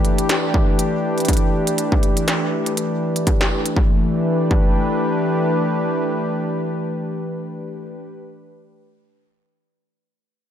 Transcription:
0.00 3.75 E3 loud
0.00 3.76 A3 medium
0.00 3.76 D4 medium
0.00 3.76 G4 medium
0.00 3.76 B4 medium
0.05 closed hi-hat soft
0.18 closed hi-hat medium
0.29 snare loud
0.29 closed hi-hat medium
0.54 kick loud
0.79 closed hi-hat medium
1.18 closed hi-hat soft
1.20 closed hi-hat soft
1.25 closed hi-hat soft
1.28 kick loud
1.28 closed hi-hat medium
1.33 closed hi-hat soft
1.37 closed hi-hat soft
1.67 closed hi-hat medium
1.78 closed hi-hat medium
1.92 kick loud
2.03 closed hi-hat soft
2.17 closed hi-hat soft
2.28 snare loud
2.28 closed hi-hat medium
2.66 closed hi-hat soft
2.77 closed hi-hat medium
3.16 closed hi-hat soft
3.27 kick loud
3.27 closed hi-hat medium
3.41 snare loud
3.66 closed hi-hat medium
3.76 7.86 E3 medium
3.76 kick loud
3.85 7.94 A3 medium
3.92 8.02 D4 medium
3.99 8.08 G4 medium
4.07 8.16 B4 medium
4.51 kick loud

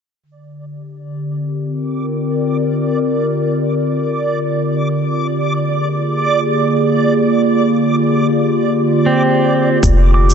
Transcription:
0.23 10.34 D3 medium
0.23 9.82 D5 medium
0.56 10.34 G4 medium
1.14 5.61 C4 medium
1.21 5.64 A#4 medium
1.42 10.34 F4 medium
5.43 10.34 A#3 medium
5.49 9.83 G#4 medium
9.06 9.78 C4 medium
9.83 10.34 F1 medium
9.83 10.34 D5 medium
9.83 kick loud
9.83 cabasa soft
10.14 10.34 D6 medium
10.30 cabasa medium

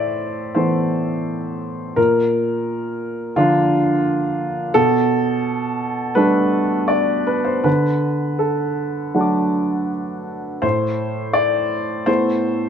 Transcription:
0.00 1.93 A2 soft
0.00 0.55 C5 medium
0.00 0.56 D5 medium
0.00 1.99 E5 medium
0.55 1.92 E3 soft
0.55 1.93 A3 soft
0.55 1.93 B3 soft
0.55 1.96 C5 medium
1.96 4.72 A#2 soft
1.96 3.37 A#4 medium
3.36 4.72 D3 soft
3.36 4.73 F3 soft
3.36 4.73 D4 soft
3.36 4.76 F4 medium
4.74 7.61 B2 medium
4.74 6.17 A4 medium
6.15 7.61 G3 soft
6.15 7.61 A3 soft
6.15 7.61 D4 soft
6.15 6.90 B4 medium
6.88 7.27 D5 medium
7.27 7.46 B4 medium
7.45 7.65 C5 medium
7.64 10.58 D3 soft
7.64 8.40 B4 medium
8.39 9.88 A4 medium
9.14 10.59 F#3 soft
9.14 10.59 A3 soft
9.14 10.59 D4 soft
9.14 10.59 F#5 soft
9.14 10.60 A5 soft
9.21 10.62 D6 soft
10.62 12.69 A2 soft
10.62 11.35 C5 medium
11.33 12.06 D5 medium
12.06 12.69 A3 soft
12.06 12.69 B3 soft
12.06 12.69 E4 soft
12.06 12.69 C5 medium

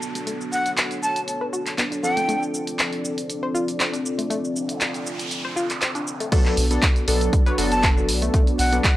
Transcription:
0.00 2.01 F#3 medium
0.00 2.00 B3 medium
0.00 2.01 B3 medium
0.00 2.01 D4 medium
0.00 6.28 D4 medium
0.00 2.00 F#4 medium
0.00 2.01 A4 medium
0.00 6.28 A4 medium
0.00 0.25 D5 medium
0.00 downlifter medium
0.00 shaker medium
0.15 0.23 A3 medium
0.15 closed hi-hat soft
0.15 shaker soft
0.27 0.33 A3 medium
0.27 2.02 C#5 medium
0.27 closed hi-hat medium
0.27 shaker soft
0.41 shaker soft
0.52 0.70 F#5 medium
0.52 shaker medium
0.66 closed hi-hat soft
0.66 shaker soft
0.77 clap loud
0.77 closed hi-hat medium
0.77 shaker soft
0.91 closed hi-hat soft
0.91 shaker soft
1.03 1.21 A5 medium
1.03 shaker medium
1.16 closed hi-hat soft
1.16 shaker soft
1.28 closed hi-hat medium
1.28 shaker soft
1.41 1.47 B4 medium
1.53 1.62 F#4 loud
1.53 shaker medium
1.67 clap soft
1.67 closed hi-hat soft
1.67 shaker soft
1.78 1.87 B3 medium
1.78 clap loud
1.78 closed hi-hat medium
1.78 shaker soft
1.92 1.97 D4 medium
1.92 closed hi-hat soft
1.92 shaker soft
2.03 6.04 F3 medium
2.03 6.04 C4 medium
2.03 6.28 C4 medium
2.03 6.04 D4 medium
2.03 6.28 F4 medium
2.03 6.04 A4 medium
2.03 6.28 D5 medium
2.03 2.42 G5 medium
2.03 shaker medium
2.17 2.25 A3 medium
2.17 closed hi-hat soft
2.17 shaker soft
2.29 2.35 A3 loud
2.29 closed hi-hat medium
2.29 shaker soft
2.43 shaker soft
2.54 shaker medium
2.67 closed hi-hat soft
2.67 shaker soft
2.79 clap loud
2.79 closed hi-hat medium
2.79 shaker soft
2.93 closed hi-hat soft
3.05 shaker medium
3.18 closed hi-hat soft
3.18 shaker soft
3.30 closed hi-hat medium
3.30 shaker soft
3.43 3.48 C5 medium
3.55 3.64 F4 loud
3.55 shaker medium
3.68 closed hi-hat soft
3.68 shaker soft
3.80 3.89 C4 loud
3.80 clap loud
3.80 closed hi-hat medium
3.80 shaker soft
3.93 3.99 D4 medium
3.93 closed hi-hat soft
3.93 shaker soft
4.06 shaker medium
4.18 4.26 A3 medium
4.18 closed hi-hat soft
4.18 shaker soft
4.30 4.36 A3 loud
4.30 closed hi-hat medium
4.30 noise sweep medium
4.30 shaker soft
4.45 shaker soft
4.56 shaker medium
4.69 closed hi-hat soft
4.69 shaker soft
4.81 clap loud
4.81 closed hi-hat medium
4.81 shaker soft
4.94 closed hi-hat soft
4.94 shaker soft
5.06 shaker medium
5.19 closed hi-hat soft
5.19 shaker soft
5.31 closed hi-hat medium
5.31 shaker soft
5.45 5.50 C5 loud
5.56 5.65 F4 loud
5.56 shaker medium
5.70 clap soft
5.70 closed hi-hat soft
5.70 shaker soft
5.82 5.91 C4 medium
5.82 clap loud
5.82 closed hi-hat medium
5.82 shaker soft
5.95 6.00 D4 medium
5.95 closed hi-hat soft
5.95 shaker soft
6.07 shaker medium
6.20 6.28 A3 medium
6.20 closed hi-hat soft
6.20 shaker soft
6.32 6.65 F#3 medium
6.32 6.38 A3 loud
6.32 8.97 B3 medium
6.32 6.65 B3 medium
6.32 8.97 D4 medium
6.32 6.65 D4 medium
6.32 8.97 F#4 medium
6.32 8.32 A4 medium
6.32 6.65 A4 loud
6.32 8.97 D5 medium
6.32 kick loud
6.32 closed hi-hat medium
6.32 crash medium
6.32 shaker soft
6.46 clap soft
6.46 shaker soft
6.57 6.78 B1 loud
6.57 open hi-hat loud
6.57 shaker medium
6.71 6.85 F#3 medium
6.71 6.85 B3 medium
6.71 6.85 D4 medium
6.71 6.85 A4 medium
6.71 closed hi-hat medium
6.71 shaker soft
6.82 kick loud
6.82 clap loud
6.82 closed hi-hat medium
6.82 shaker soft
6.96 closed hi-hat soft
6.96 shaker soft
7.08 7.28 B1 loud
7.08 7.43 F#3 medium
7.08 7.43 B3 medium
7.08 7.43 D4 medium
7.08 7.43 A4 loud
7.08 open hi-hat loud
7.08 shaker medium
7.21 closed hi-hat medium
7.21 shaker soft
7.33 kick loud
7.33 closed hi-hat medium
7.33 shaker soft
7.46 7.56 F#3 medium
7.46 7.56 B3 medium
7.46 7.56 D4 medium
7.46 7.52 B4 loud
7.46 7.56 C#5 loud
7.46 closed hi-hat soft
7.46 shaker soft
7.58 8.10 F#1 medium
7.58 8.69 F#3 loud
7.58 8.69 B3 medium
7.58 8.69 D4 medium
7.58 7.67 F#4 loud
7.58 8.69 A4 loud
7.58 open hi-hat loud
7.58 shaker medium
7.71 7.89 A5 medium
7.71 closed hi-hat medium
7.71 shaker soft
7.83 7.92 B3 loud
7.83 kick loud
7.83 clap loud
7.83 closed hi-hat medium
7.83 shaker soft
7.97 8.02 D4 medium
7.97 shaker soft
8.09 8.29 B1 medium
8.09 open hi-hat loud
8.09 shaker medium
8.22 8.30 A3 medium
8.22 closed hi-hat medium
8.22 shaker soft
8.34 8.40 A3 loud
8.34 8.97 B4 medium
8.34 kick loud
8.34 closed hi-hat medium
8.34 shaker soft
8.47 closed hi-hat soft
8.47 shaker soft
8.59 8.80 B1 loud
8.59 8.77 F#5 medium
8.59 open hi-hat loud
8.59 shaker medium
8.72 8.87 F#3 medium
8.72 8.87 B3 medium
8.72 8.87 D4 medium
8.72 8.87 A4 medium
8.72 closed hi-hat medium
8.72 shaker soft
8.84 kick loud
8.84 clap loud
8.84 closed hi-hat medium
8.84 shaker soft

